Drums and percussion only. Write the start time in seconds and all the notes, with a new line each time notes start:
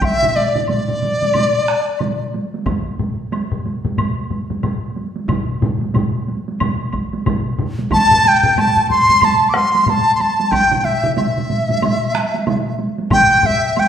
0.01 taiko, taiko high, high woodblock
0.23 taiko mid
0.36 taiko high
0.55 taiko mid
0.67 taiko mid, taiko high, high woodblock
0.88 taiko mid
1.02 taiko mid, taiko high
1.22 taiko mid, taiko high
1.34 taiko mid, taiko high, high woodblock
1.68 taiko rim
1.99 taiko mid, taiko high, high woodblock
2.34 taiko high
2.54 taiko high
2.66 taiko, taiko low-mid, taiko high, high woodblock
2.99 taiko low-mid, taiko high
3.32 taiko high, high woodblock
3.52 taiko low-mid
3.66 taiko high
3.85 taiko low-mid, taiko high
3.98 taiko low-mid, taiko high, high woodblock
4.30 taiko low-mid, taiko high
4.50 taiko low-mid, taiko high
4.63 taiko low-mid, taiko high, high woodblock
4.96 taiko high
5.16 taiko high
5.29 taiko, taiko low-mid, taiko mid, taiko high, high woodblock
5.62 taiko low-mid, taiko mid, taiko high
5.81 taiko high
5.94 taiko low-mid, taiko mid, taiko high, high woodblock
6.28 taiko high
6.48 taiko high
6.60 taiko low-mid, taiko mid, taiko high, high woodblock
6.93 taiko, taiko high, high woodblock
7.13 taiko high
7.26 taiko, taiko low-mid, taiko mid, taiko high, high woodblock
7.59 taiko low-mid, taiko mid
7.79 taiko high
7.91 taiko, taiko high, high woodblock
8.11 taiko low-mid
8.25 taiko high
8.43 taiko low-mid
8.56 taiko low-mid, taiko high, high woodblock
8.77 taiko low-mid
8.90 taiko low-mid, taiko high
9.09 taiko low-mid, taiko high
9.21 taiko low-mid, taiko high, high woodblock
9.54 taiko rim, taiko high
9.75 taiko high
9.86 taiko low-mid, taiko high, high woodblock
10.20 taiko high
10.40 taiko high
10.52 taiko, taiko high, high woodblock
10.71 taiko mid
10.84 taiko high
11.04 taiko mid
11.17 taiko mid, taiko high, high woodblock
11.38 taiko mid
11.50 taiko mid, taiko high
11.69 taiko mid, taiko high
11.82 taiko mid, taiko high, high woodblock
12.14 taiko rim, taiko high
12.34 taiko high
12.47 taiko mid, taiko high, high woodblock
12.79 taiko high
12.98 taiko high
13.11 taiko, taiko low-mid, taiko high, high woodblock
13.43 taiko low-mid, taiko high
13.76 taiko high, high woodblock